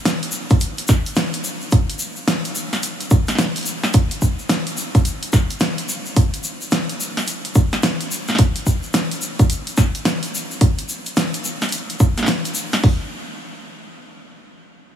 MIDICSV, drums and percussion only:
0, 0, Header, 1, 2, 480
1, 0, Start_track
1, 0, Tempo, 555556
1, 1488, Time_signature, 4, 2, 24, 8
1, 12924, End_track
2, 0, Start_track
2, 0, Title_t, "Drums"
2, 47, Note_on_c, 9, 38, 123
2, 47, Note_on_c, 9, 42, 82
2, 51, Note_on_c, 9, 82, 56
2, 133, Note_off_c, 9, 38, 0
2, 133, Note_off_c, 9, 42, 0
2, 137, Note_off_c, 9, 82, 0
2, 196, Note_on_c, 9, 82, 26
2, 197, Note_on_c, 9, 42, 52
2, 274, Note_off_c, 9, 82, 0
2, 274, Note_on_c, 9, 82, 105
2, 284, Note_off_c, 9, 42, 0
2, 360, Note_off_c, 9, 82, 0
2, 429, Note_on_c, 9, 82, 39
2, 437, Note_on_c, 9, 42, 38
2, 438, Note_on_c, 9, 36, 114
2, 515, Note_off_c, 9, 82, 0
2, 521, Note_on_c, 9, 82, 58
2, 524, Note_off_c, 9, 36, 0
2, 524, Note_off_c, 9, 42, 0
2, 528, Note_on_c, 9, 42, 79
2, 607, Note_off_c, 9, 82, 0
2, 614, Note_off_c, 9, 42, 0
2, 670, Note_on_c, 9, 82, 29
2, 677, Note_on_c, 9, 42, 54
2, 756, Note_off_c, 9, 82, 0
2, 761, Note_on_c, 9, 82, 99
2, 763, Note_off_c, 9, 42, 0
2, 768, Note_on_c, 9, 40, 40
2, 769, Note_on_c, 9, 36, 108
2, 847, Note_off_c, 9, 82, 0
2, 854, Note_off_c, 9, 40, 0
2, 855, Note_off_c, 9, 36, 0
2, 912, Note_on_c, 9, 82, 39
2, 918, Note_on_c, 9, 42, 36
2, 999, Note_off_c, 9, 82, 0
2, 1000, Note_on_c, 9, 82, 52
2, 1005, Note_off_c, 9, 42, 0
2, 1007, Note_on_c, 9, 38, 127
2, 1007, Note_on_c, 9, 42, 79
2, 1086, Note_off_c, 9, 82, 0
2, 1094, Note_off_c, 9, 38, 0
2, 1094, Note_off_c, 9, 42, 0
2, 1146, Note_on_c, 9, 82, 25
2, 1157, Note_on_c, 9, 42, 53
2, 1233, Note_off_c, 9, 82, 0
2, 1243, Note_off_c, 9, 42, 0
2, 1244, Note_on_c, 9, 82, 90
2, 1331, Note_off_c, 9, 82, 0
2, 1392, Note_on_c, 9, 82, 38
2, 1478, Note_off_c, 9, 82, 0
2, 1480, Note_on_c, 9, 82, 49
2, 1489, Note_on_c, 9, 36, 119
2, 1489, Note_on_c, 9, 42, 77
2, 1566, Note_off_c, 9, 82, 0
2, 1575, Note_off_c, 9, 42, 0
2, 1576, Note_off_c, 9, 36, 0
2, 1637, Note_on_c, 9, 42, 51
2, 1641, Note_on_c, 9, 82, 27
2, 1718, Note_off_c, 9, 82, 0
2, 1718, Note_on_c, 9, 82, 93
2, 1724, Note_off_c, 9, 42, 0
2, 1804, Note_off_c, 9, 82, 0
2, 1868, Note_on_c, 9, 82, 35
2, 1954, Note_off_c, 9, 82, 0
2, 1967, Note_on_c, 9, 38, 127
2, 1967, Note_on_c, 9, 42, 78
2, 1970, Note_on_c, 9, 82, 56
2, 2053, Note_off_c, 9, 38, 0
2, 2053, Note_off_c, 9, 42, 0
2, 2056, Note_off_c, 9, 82, 0
2, 2112, Note_on_c, 9, 82, 29
2, 2117, Note_on_c, 9, 42, 50
2, 2199, Note_off_c, 9, 82, 0
2, 2204, Note_off_c, 9, 42, 0
2, 2204, Note_on_c, 9, 82, 93
2, 2290, Note_off_c, 9, 82, 0
2, 2358, Note_on_c, 9, 40, 36
2, 2358, Note_on_c, 9, 42, 36
2, 2358, Note_on_c, 9, 82, 39
2, 2443, Note_off_c, 9, 82, 0
2, 2443, Note_on_c, 9, 82, 52
2, 2444, Note_off_c, 9, 40, 0
2, 2444, Note_off_c, 9, 42, 0
2, 2447, Note_on_c, 9, 42, 79
2, 2530, Note_off_c, 9, 82, 0
2, 2533, Note_off_c, 9, 42, 0
2, 2595, Note_on_c, 9, 82, 29
2, 2596, Note_on_c, 9, 42, 54
2, 2681, Note_off_c, 9, 82, 0
2, 2683, Note_off_c, 9, 42, 0
2, 2683, Note_on_c, 9, 82, 86
2, 2688, Note_on_c, 9, 36, 107
2, 2769, Note_off_c, 9, 82, 0
2, 2774, Note_off_c, 9, 36, 0
2, 2828, Note_on_c, 9, 82, 40
2, 2837, Note_on_c, 9, 40, 33
2, 2837, Note_on_c, 9, 42, 37
2, 2897, Note_off_c, 9, 40, 0
2, 2897, Note_on_c, 9, 40, 29
2, 2915, Note_off_c, 9, 82, 0
2, 2923, Note_off_c, 9, 42, 0
2, 2923, Note_on_c, 9, 82, 49
2, 2925, Note_on_c, 9, 38, 124
2, 2925, Note_on_c, 9, 42, 74
2, 2976, Note_off_c, 9, 40, 0
2, 2976, Note_on_c, 9, 40, 24
2, 3010, Note_off_c, 9, 82, 0
2, 3011, Note_off_c, 9, 38, 0
2, 3011, Note_off_c, 9, 42, 0
2, 3063, Note_off_c, 9, 40, 0
2, 3074, Note_on_c, 9, 82, 28
2, 3075, Note_on_c, 9, 42, 48
2, 3086, Note_off_c, 9, 42, 0
2, 3086, Note_on_c, 9, 42, 32
2, 3092, Note_off_c, 9, 42, 0
2, 3092, Note_on_c, 9, 42, 38
2, 3120, Note_off_c, 9, 42, 0
2, 3120, Note_on_c, 9, 42, 27
2, 3134, Note_off_c, 9, 42, 0
2, 3134, Note_on_c, 9, 42, 22
2, 3148, Note_off_c, 9, 42, 0
2, 3148, Note_on_c, 9, 42, 18
2, 3160, Note_off_c, 9, 82, 0
2, 3161, Note_on_c, 9, 82, 95
2, 3235, Note_off_c, 9, 42, 0
2, 3247, Note_off_c, 9, 82, 0
2, 3312, Note_on_c, 9, 82, 37
2, 3314, Note_on_c, 9, 40, 53
2, 3398, Note_off_c, 9, 82, 0
2, 3400, Note_off_c, 9, 40, 0
2, 3401, Note_on_c, 9, 82, 49
2, 3403, Note_on_c, 9, 42, 72
2, 3406, Note_on_c, 9, 36, 121
2, 3487, Note_off_c, 9, 82, 0
2, 3489, Note_off_c, 9, 42, 0
2, 3493, Note_off_c, 9, 36, 0
2, 3553, Note_on_c, 9, 42, 52
2, 3553, Note_on_c, 9, 82, 25
2, 3639, Note_off_c, 9, 42, 0
2, 3639, Note_off_c, 9, 82, 0
2, 3644, Note_on_c, 9, 82, 82
2, 3646, Note_on_c, 9, 36, 61
2, 3730, Note_off_c, 9, 82, 0
2, 3733, Note_off_c, 9, 36, 0
2, 3791, Note_on_c, 9, 82, 42
2, 3878, Note_off_c, 9, 82, 0
2, 3883, Note_on_c, 9, 38, 124
2, 3883, Note_on_c, 9, 42, 75
2, 3885, Note_on_c, 9, 82, 53
2, 3969, Note_off_c, 9, 38, 0
2, 3969, Note_off_c, 9, 42, 0
2, 3971, Note_off_c, 9, 82, 0
2, 4033, Note_on_c, 9, 42, 50
2, 4039, Note_on_c, 9, 82, 26
2, 4119, Note_off_c, 9, 42, 0
2, 4123, Note_off_c, 9, 82, 0
2, 4123, Note_on_c, 9, 82, 80
2, 4209, Note_off_c, 9, 82, 0
2, 4275, Note_on_c, 9, 42, 36
2, 4276, Note_on_c, 9, 36, 106
2, 4278, Note_on_c, 9, 82, 41
2, 4361, Note_off_c, 9, 42, 0
2, 4362, Note_off_c, 9, 36, 0
2, 4363, Note_on_c, 9, 42, 76
2, 4365, Note_off_c, 9, 82, 0
2, 4370, Note_on_c, 9, 82, 54
2, 4450, Note_off_c, 9, 42, 0
2, 4456, Note_off_c, 9, 82, 0
2, 4515, Note_on_c, 9, 42, 51
2, 4519, Note_on_c, 9, 82, 26
2, 4602, Note_off_c, 9, 42, 0
2, 4602, Note_off_c, 9, 82, 0
2, 4602, Note_on_c, 9, 82, 78
2, 4605, Note_on_c, 9, 40, 39
2, 4607, Note_on_c, 9, 36, 105
2, 4689, Note_off_c, 9, 82, 0
2, 4691, Note_off_c, 9, 40, 0
2, 4693, Note_off_c, 9, 36, 0
2, 4751, Note_on_c, 9, 82, 39
2, 4756, Note_on_c, 9, 42, 35
2, 4837, Note_off_c, 9, 82, 0
2, 4837, Note_on_c, 9, 82, 51
2, 4842, Note_off_c, 9, 42, 0
2, 4845, Note_on_c, 9, 38, 117
2, 4845, Note_on_c, 9, 42, 77
2, 4923, Note_off_c, 9, 82, 0
2, 4931, Note_off_c, 9, 38, 0
2, 4931, Note_off_c, 9, 42, 0
2, 4993, Note_on_c, 9, 82, 27
2, 4996, Note_on_c, 9, 42, 49
2, 5079, Note_off_c, 9, 82, 0
2, 5082, Note_off_c, 9, 42, 0
2, 5087, Note_on_c, 9, 82, 84
2, 5174, Note_off_c, 9, 82, 0
2, 5232, Note_on_c, 9, 82, 39
2, 5319, Note_off_c, 9, 82, 0
2, 5326, Note_on_c, 9, 42, 74
2, 5327, Note_on_c, 9, 36, 117
2, 5331, Note_on_c, 9, 82, 50
2, 5413, Note_off_c, 9, 36, 0
2, 5413, Note_off_c, 9, 42, 0
2, 5417, Note_off_c, 9, 82, 0
2, 5475, Note_on_c, 9, 42, 53
2, 5477, Note_on_c, 9, 82, 24
2, 5561, Note_off_c, 9, 42, 0
2, 5561, Note_off_c, 9, 82, 0
2, 5561, Note_on_c, 9, 82, 78
2, 5648, Note_off_c, 9, 82, 0
2, 5714, Note_on_c, 9, 82, 39
2, 5800, Note_off_c, 9, 82, 0
2, 5801, Note_on_c, 9, 82, 47
2, 5807, Note_on_c, 9, 38, 117
2, 5807, Note_on_c, 9, 42, 73
2, 5887, Note_off_c, 9, 82, 0
2, 5893, Note_off_c, 9, 38, 0
2, 5893, Note_off_c, 9, 42, 0
2, 5954, Note_on_c, 9, 82, 26
2, 5956, Note_on_c, 9, 42, 48
2, 6041, Note_off_c, 9, 82, 0
2, 6043, Note_off_c, 9, 42, 0
2, 6051, Note_on_c, 9, 82, 90
2, 6138, Note_off_c, 9, 82, 0
2, 6196, Note_on_c, 9, 40, 37
2, 6196, Note_on_c, 9, 42, 37
2, 6201, Note_on_c, 9, 82, 33
2, 6281, Note_off_c, 9, 82, 0
2, 6281, Note_on_c, 9, 82, 52
2, 6283, Note_off_c, 9, 40, 0
2, 6283, Note_off_c, 9, 42, 0
2, 6286, Note_on_c, 9, 42, 75
2, 6367, Note_off_c, 9, 82, 0
2, 6372, Note_off_c, 9, 42, 0
2, 6435, Note_on_c, 9, 82, 26
2, 6436, Note_on_c, 9, 42, 48
2, 6522, Note_off_c, 9, 42, 0
2, 6522, Note_off_c, 9, 82, 0
2, 6523, Note_on_c, 9, 82, 87
2, 6527, Note_on_c, 9, 36, 102
2, 6610, Note_off_c, 9, 82, 0
2, 6614, Note_off_c, 9, 36, 0
2, 6672, Note_on_c, 9, 82, 38
2, 6678, Note_on_c, 9, 40, 39
2, 6678, Note_on_c, 9, 42, 33
2, 6759, Note_off_c, 9, 82, 0
2, 6762, Note_on_c, 9, 82, 45
2, 6764, Note_off_c, 9, 40, 0
2, 6764, Note_off_c, 9, 42, 0
2, 6768, Note_on_c, 9, 38, 116
2, 6768, Note_on_c, 9, 42, 73
2, 6849, Note_off_c, 9, 82, 0
2, 6854, Note_off_c, 9, 38, 0
2, 6854, Note_off_c, 9, 42, 0
2, 6917, Note_on_c, 9, 42, 48
2, 6918, Note_on_c, 9, 82, 26
2, 7003, Note_off_c, 9, 42, 0
2, 7005, Note_off_c, 9, 82, 0
2, 7010, Note_on_c, 9, 82, 87
2, 7097, Note_off_c, 9, 82, 0
2, 7152, Note_on_c, 9, 82, 36
2, 7159, Note_on_c, 9, 40, 22
2, 7167, Note_off_c, 9, 40, 0
2, 7167, Note_on_c, 9, 40, 33
2, 7214, Note_off_c, 9, 40, 0
2, 7214, Note_on_c, 9, 40, 42
2, 7238, Note_off_c, 9, 82, 0
2, 7245, Note_on_c, 9, 42, 78
2, 7248, Note_on_c, 9, 36, 118
2, 7249, Note_on_c, 9, 82, 44
2, 7300, Note_off_c, 9, 40, 0
2, 7331, Note_off_c, 9, 42, 0
2, 7334, Note_off_c, 9, 36, 0
2, 7336, Note_off_c, 9, 82, 0
2, 7390, Note_on_c, 9, 82, 23
2, 7393, Note_on_c, 9, 42, 52
2, 7476, Note_off_c, 9, 82, 0
2, 7479, Note_off_c, 9, 42, 0
2, 7485, Note_on_c, 9, 82, 89
2, 7488, Note_on_c, 9, 36, 61
2, 7572, Note_off_c, 9, 82, 0
2, 7574, Note_off_c, 9, 36, 0
2, 7629, Note_on_c, 9, 82, 35
2, 7715, Note_off_c, 9, 82, 0
2, 7721, Note_on_c, 9, 82, 56
2, 7725, Note_on_c, 9, 38, 109
2, 7725, Note_on_c, 9, 42, 74
2, 7807, Note_off_c, 9, 82, 0
2, 7811, Note_off_c, 9, 38, 0
2, 7811, Note_off_c, 9, 42, 0
2, 7875, Note_on_c, 9, 42, 50
2, 7877, Note_on_c, 9, 82, 26
2, 7961, Note_off_c, 9, 42, 0
2, 7964, Note_off_c, 9, 82, 0
2, 7964, Note_on_c, 9, 82, 76
2, 8050, Note_off_c, 9, 82, 0
2, 8115, Note_on_c, 9, 42, 36
2, 8117, Note_on_c, 9, 36, 105
2, 8118, Note_on_c, 9, 82, 39
2, 8202, Note_off_c, 9, 42, 0
2, 8204, Note_off_c, 9, 36, 0
2, 8204, Note_off_c, 9, 82, 0
2, 8205, Note_on_c, 9, 42, 74
2, 8217, Note_on_c, 9, 82, 51
2, 8292, Note_off_c, 9, 42, 0
2, 8303, Note_off_c, 9, 82, 0
2, 8354, Note_on_c, 9, 42, 50
2, 8362, Note_on_c, 9, 82, 26
2, 8441, Note_off_c, 9, 42, 0
2, 8442, Note_off_c, 9, 82, 0
2, 8442, Note_on_c, 9, 82, 83
2, 8445, Note_on_c, 9, 40, 42
2, 8448, Note_on_c, 9, 36, 94
2, 8528, Note_off_c, 9, 82, 0
2, 8532, Note_off_c, 9, 40, 0
2, 8535, Note_off_c, 9, 36, 0
2, 8595, Note_on_c, 9, 42, 36
2, 8597, Note_on_c, 9, 82, 36
2, 8682, Note_off_c, 9, 42, 0
2, 8684, Note_off_c, 9, 82, 0
2, 8686, Note_on_c, 9, 38, 110
2, 8686, Note_on_c, 9, 42, 76
2, 8689, Note_on_c, 9, 82, 47
2, 8773, Note_off_c, 9, 38, 0
2, 8773, Note_off_c, 9, 42, 0
2, 8776, Note_off_c, 9, 82, 0
2, 8836, Note_on_c, 9, 42, 50
2, 8845, Note_on_c, 9, 82, 26
2, 8923, Note_off_c, 9, 42, 0
2, 8931, Note_off_c, 9, 82, 0
2, 8941, Note_on_c, 9, 82, 87
2, 9027, Note_off_c, 9, 82, 0
2, 9081, Note_on_c, 9, 82, 40
2, 9167, Note_on_c, 9, 42, 80
2, 9168, Note_off_c, 9, 82, 0
2, 9169, Note_on_c, 9, 36, 117
2, 9176, Note_on_c, 9, 82, 48
2, 9253, Note_off_c, 9, 42, 0
2, 9255, Note_off_c, 9, 36, 0
2, 9263, Note_off_c, 9, 82, 0
2, 9318, Note_on_c, 9, 82, 23
2, 9319, Note_on_c, 9, 42, 52
2, 9405, Note_off_c, 9, 42, 0
2, 9405, Note_off_c, 9, 82, 0
2, 9408, Note_on_c, 9, 82, 91
2, 9494, Note_off_c, 9, 82, 0
2, 9556, Note_on_c, 9, 82, 40
2, 9559, Note_on_c, 9, 42, 38
2, 9642, Note_off_c, 9, 82, 0
2, 9645, Note_off_c, 9, 42, 0
2, 9648, Note_on_c, 9, 82, 48
2, 9650, Note_on_c, 9, 38, 122
2, 9650, Note_on_c, 9, 42, 77
2, 9734, Note_off_c, 9, 82, 0
2, 9737, Note_off_c, 9, 38, 0
2, 9737, Note_off_c, 9, 42, 0
2, 9797, Note_on_c, 9, 82, 28
2, 9799, Note_on_c, 9, 42, 52
2, 9883, Note_off_c, 9, 82, 0
2, 9886, Note_off_c, 9, 42, 0
2, 9889, Note_on_c, 9, 82, 83
2, 9975, Note_off_c, 9, 82, 0
2, 10036, Note_on_c, 9, 82, 38
2, 10039, Note_on_c, 9, 40, 38
2, 10039, Note_on_c, 9, 42, 35
2, 10099, Note_off_c, 9, 42, 0
2, 10099, Note_on_c, 9, 42, 29
2, 10123, Note_off_c, 9, 82, 0
2, 10125, Note_off_c, 9, 40, 0
2, 10127, Note_on_c, 9, 82, 48
2, 10129, Note_off_c, 9, 42, 0
2, 10129, Note_on_c, 9, 42, 84
2, 10179, Note_off_c, 9, 42, 0
2, 10179, Note_on_c, 9, 42, 24
2, 10213, Note_off_c, 9, 82, 0
2, 10266, Note_off_c, 9, 42, 0
2, 10277, Note_on_c, 9, 82, 27
2, 10280, Note_on_c, 9, 42, 53
2, 10363, Note_off_c, 9, 82, 0
2, 10366, Note_off_c, 9, 42, 0
2, 10367, Note_on_c, 9, 82, 84
2, 10370, Note_on_c, 9, 36, 105
2, 10454, Note_off_c, 9, 82, 0
2, 10456, Note_off_c, 9, 36, 0
2, 10517, Note_on_c, 9, 82, 39
2, 10519, Note_on_c, 9, 40, 18
2, 10519, Note_on_c, 9, 42, 36
2, 10530, Note_off_c, 9, 40, 0
2, 10530, Note_on_c, 9, 40, 24
2, 10534, Note_off_c, 9, 40, 0
2, 10534, Note_on_c, 9, 40, 21
2, 10564, Note_off_c, 9, 40, 0
2, 10564, Note_on_c, 9, 40, 29
2, 10578, Note_off_c, 9, 40, 0
2, 10578, Note_on_c, 9, 40, 30
2, 10595, Note_off_c, 9, 40, 0
2, 10595, Note_on_c, 9, 40, 36
2, 10600, Note_off_c, 9, 82, 0
2, 10600, Note_on_c, 9, 82, 45
2, 10606, Note_off_c, 9, 42, 0
2, 10610, Note_on_c, 9, 38, 113
2, 10610, Note_on_c, 9, 42, 79
2, 10681, Note_off_c, 9, 40, 0
2, 10686, Note_off_c, 9, 82, 0
2, 10696, Note_off_c, 9, 38, 0
2, 10696, Note_off_c, 9, 42, 0
2, 10758, Note_on_c, 9, 82, 28
2, 10759, Note_on_c, 9, 42, 52
2, 10841, Note_off_c, 9, 82, 0
2, 10841, Note_on_c, 9, 82, 90
2, 10846, Note_off_c, 9, 42, 0
2, 10927, Note_off_c, 9, 82, 0
2, 10994, Note_on_c, 9, 82, 37
2, 11001, Note_on_c, 9, 40, 56
2, 11001, Note_on_c, 9, 42, 36
2, 11081, Note_off_c, 9, 82, 0
2, 11087, Note_off_c, 9, 40, 0
2, 11087, Note_off_c, 9, 42, 0
2, 11089, Note_on_c, 9, 46, 88
2, 11090, Note_on_c, 9, 36, 103
2, 11176, Note_off_c, 9, 46, 0
2, 11177, Note_off_c, 9, 36, 0
2, 12924, End_track
0, 0, End_of_file